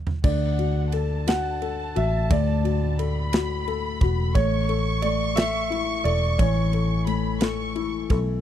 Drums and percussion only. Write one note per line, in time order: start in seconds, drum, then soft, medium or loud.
0.07 floor tom medium
0.24 kick loud
0.24 crash medium
0.59 ride soft
0.92 ride medium
1.27 snare loud
1.27 ride medium
1.62 ride soft
1.96 ride medium
2.31 kick loud
2.31 ride medium
2.65 ride soft
2.99 ride medium
3.33 snare loud
3.33 ride medium
3.68 ride soft
4.01 kick loud
4.01 ride soft
4.35 kick loud
4.35 ride medium
4.69 ride soft
5.02 ride medium
5.37 snare loud
5.37 ride medium
5.72 ride soft
6.05 ride medium
6.39 kick loud
6.39 ride medium
6.73 ride soft
7.07 ride medium
7.41 snare loud
7.41 ride medium
7.76 ride soft
8.10 kick loud
8.10 ride medium